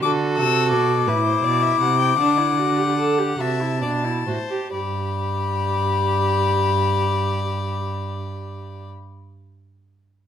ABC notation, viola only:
X:1
M:12/8
L:1/16
Q:3/8=43
K:G
V:1 name="Viola"
F6 E6 D E F G A G F E D E F G | G24 |]